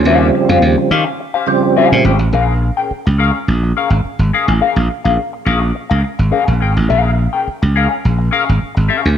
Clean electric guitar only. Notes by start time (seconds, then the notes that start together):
0.06 C#4 G4 C5 F5
0.34 muted clean electric guitar stroke
0.49 C#4 G4 C5 F5
0.78 muted clean electric guitar stroke
0.91 C#4 G4 C5 F5
1.06 muted clean electric guitar stroke
1.20 muted clean electric guitar stroke
1.34 C#4 G4 C5 F5
1.48 muted clean electric guitar stroke
1.63 muted clean electric guitar stroke
1.76 C#4 G4 C5 F5
1.91 muted clean electric guitar stroke
2.05 C#4 G4 C5 G5
2.19 muted clean electric guitar stroke
2.33 C#4 G#4 A#4 F5
2.62 muted clean electric guitar stroke
2.77 C#4 G#4 A#4 G5
3.06 muted clean electric guitar stroke
3.18 C#4 G#4 A#4 F5
3.33 muted clean electric guitar stroke
3.63 muted clean electric guitar stroke
3.77 C#4 G#4 A#4 F5
3.92 muted clean electric guitar stroke
4.20 muted clean electric guitar stroke
4.33 C#4 G#4 A#4 F5
4.48 muted clean electric guitar stroke
4.60 C#4 G#4 A#4 F5
4.90 muted clean electric guitar stroke
5.05 C#4 G#4 A#4 F5
5.33 muted clean electric guitar stroke
5.45 C#4 G#4 A#4 F5
5.62 muted clean electric guitar stroke
5.75 muted clean electric guitar stroke
5.90 C#4 G#4 A#4 F5
6.04 muted clean electric guitar stroke
6.19 muted clean electric guitar stroke
6.31 C#4 G#4 A#4 F5
6.46 muted clean electric guitar stroke
6.60 C#4 G#4 A#4 G5
6.76 muted clean electric guitar stroke
6.89 C#4 G#4 A#4 F5
7.19 muted clean electric guitar stroke
7.33 C#4 G#4 A#4 G5
7.62 muted clean electric guitar stroke
7.76 C#4 G#4 A#4 F5
7.90 muted clean electric guitar stroke
8.19 muted clean electric guitar stroke
8.31 C#4 G#4 A#4 F5
8.46 muted clean electric guitar stroke
8.75 muted clean electric guitar stroke
8.88 C#4 G#4 A#4 F5
9.04 muted clean electric guitar stroke